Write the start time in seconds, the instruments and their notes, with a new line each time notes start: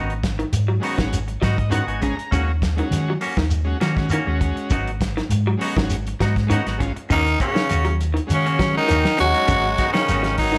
Already playing: fingered electric bass G#1, clean electric guitar C#3 D#3 B3 D#4 F#4
0.10 closed hi-hat
0.23 muted clean electric guitar stroke, kick, snare, closed hi-hat, shekere
0.39 clean electric guitar D#3, closed hi-hat
0.52 fingered electric bass G#2, muted clean electric guitar stroke, closed hi-hat, shekere
0.68 clean electric guitar F#3, muted clean electric guitar stroke
0.80 clean electric guitar D#3 B3 D#4, transistor combo organ G#3 C#4 F#4, open hi-hat
0.84 clean electric guitar F#4, shekere
0.98 fingered electric bass G#1, clean electric guitar D#3, muted clean electric guitar stroke, kick, snare, closed hi-hat
1.13 closed hi-hat, shekere
1.28 muted clean electric guitar stroke, closed hi-hat
1.41 fingered electric bass G#2, clean electric guitar D#3 F#3 B3 D#4 F#4, transistor combo organ D#5, kick, snare, closed hi-hat, shekere
1.58 muted clean electric guitar stroke, kick, closed hi-hat
1.70 clean electric guitar D#3 B3 F#4, transistor combo organ G#3 C#4 F#4 F#5, muted clean electric guitar stroke, closed hi-hat, shekere
1.87 fingered electric bass G#1, clean electric guitar B3 D#4 F#4, transistor combo organ G#5, closed hi-hat
2.01 clean electric guitar C#3, transistor combo organ G#3 C#4 G#4 A#5, muted clean electric guitar stroke, kick, closed hi-hat, shekere
2.17 muted clean electric guitar stroke, closed hi-hat
2.31 fingered electric bass D#2, clean electric guitar C#3 A#3 C#4 F#4, transistor combo organ G#3 C#4 F#4, kick, closed hi-hat, shekere
2.62 muted clean electric guitar stroke, kick, snare, closed hi-hat, shekere
2.76 clean electric guitar D#3, transistor combo organ G#3 C#4 F#4, closed hi-hat
2.91 fingered electric bass D#3, muted clean electric guitar stroke, snare, closed hi-hat, shekere
3.08 clean electric guitar F#3, muted clean electric guitar stroke
3.21 clean electric guitar A#3 C#4 F#4, open hi-hat, shekere
3.37 fingered electric bass D#2, clean electric guitar D#3, muted clean electric guitar stroke, kick, snare
3.51 closed hi-hat, shekere
3.64 transistor combo organ G#3 C#4 F#4, muted clean electric guitar stroke
3.81 fingered electric bass D#3, clean electric guitar F#3 A#3 C#4 F#4, snare, closed hi-hat, shekere
3.96 transistor combo organ G#3 C#4 F#4, muted clean electric guitar stroke, kick, snare
4.09 clean electric guitar D#3 A#3 C#4 F#4, closed hi-hat, shekere
4.26 fingered electric bass D#2, transistor combo organ G#3 C#4 F#4, clean electric guitar C#4 F#4
4.41 muted clean electric guitar stroke, kick, closed hi-hat, shekere
4.56 muted clean electric guitar stroke, muted fingered electric bass stroke, closed hi-hat
4.70 fingered electric bass G#1, clean electric guitar C#3 F#3 B3 D#4 F#4, kick, closed hi-hat, shekere
4.87 closed hi-hat
5.01 muted clean electric guitar stroke, kick, snare, closed hi-hat, shekere
5.17 clean electric guitar D#3, snare, closed hi-hat
5.29 fingered electric bass G#2, muted clean electric guitar stroke, closed hi-hat, shekere
5.47 clean electric guitar F#3, muted clean electric guitar stroke
5.57 clean electric guitar F#3 B3, transistor combo organ G#3 C#4 F#4, snare, open hi-hat, shekere
5.62 clean electric guitar D#4 F#4
5.77 fingered electric bass G#1, clean electric guitar D#3, muted clean electric guitar stroke, kick, snare, closed hi-hat
5.90 closed hi-hat, shekere
6.07 muted clean electric guitar stroke, closed hi-hat
6.20 fingered electric bass G#2, clean electric guitar F#3 B3 D#4 F#4, kick, snare, closed hi-hat, shekere
6.36 kick, snare, closed hi-hat
6.47 clean electric guitar D#3, transistor combo organ G#3 C#4 F#4, closed hi-hat, shekere
6.52 clean electric guitar B3 D#4 F#4
6.66 fingered electric bass G#1, clean electric guitar B3 D#4 F#4, snare, closed hi-hat
6.78 transistor combo organ G#3 C#4 F4, muted clean electric guitar stroke, kick, closed hi-hat, shekere
6.96 muted fingered electric bass stroke, muted clean electric guitar stroke, closed hi-hat
7.10 fingered electric bass D#2, clean electric guitar C#3 A#3 C#4 F#4, bass trombone D#3, tenor saxophone D#3 D#4, kick, closed hi-hat, shekere
7.26 muted clean electric guitar stroke, closed hi-hat
7.40 tenor saxophone C#3 C#4, bass trombone C#3, clean electric guitar A#3 C#4 F#4, kick, closed hi-hat, shekere
7.55 clean electric guitar D#3, muted clean electric guitar stroke, snare, closed hi-hat
7.69 fingered electric bass D#2, clean electric guitar C#4 F#4, closed hi-hat, shekere
7.85 clean electric guitar F#3, muted clean electric guitar stroke, closed hi-hat
8.01 closed hi-hat, shekere
8.14 clean electric guitar D#3, muted clean electric guitar stroke, closed hi-hat
8.27 transistor combo organ G#3 C#4 F#4, closed hi-hat, shekere
8.31 tenor saxophone C#3 C#4, bass trombone C#3, fingered electric bass D#3, muted clean electric guitar stroke
8.46 clean electric guitar A#3 C#4 F#4, closed hi-hat
8.59 clean electric guitar F#3, kick, snare, closed hi-hat, shekere
8.73 transistor combo organ G#3 C#4 F#4
8.77 tenor saxophone D#3 D#4, bass trombone D#3
8.88 fingered electric bass D#2, clean electric guitar D#3 A#3 C#4 F#4, closed hi-hat, shekere
9.05 muted clean electric guitar stroke, snare
9.17 fingered electric bass D#2, clean electric guitar C#3, bass trombone F#3, tenor saxophone G#3 F#4, transistor combo organ C#4 G#4, muted clean electric guitar stroke, closed hi-hat, shekere
9.33 transistor combo organ G#3 C#4 D#4, clean electric guitar C#4 F#4, closed hi-hat
9.48 fingered electric bass G#1, clean electric guitar C#3 D#3 B3 F#4, muted clean electric guitar stroke, kick, closed hi-hat, shekere
9.65 muted clean electric guitar stroke
9.78 clean electric guitar D#3 B3 D#4 F#4, kick, snare, closed hi-hat, shekere
9.93 bass trombone C#3, clean electric guitar D#3, tenor saxophone D#3 C#4, muted clean electric guitar stroke, snare, closed hi-hat
10.08 fingered electric bass G#1, clean electric guitar D#3 B3 D#4 F#4, snare, closed hi-hat, shekere
10.24 muted clean electric guitar stroke, snare, closed hi-hat
10.38 bass trombone D#3, tenor saxophone F#3 D#4, kick, open hi-hat, shekere
10.52 clean electric guitar D#3, muted clean electric guitar stroke, snare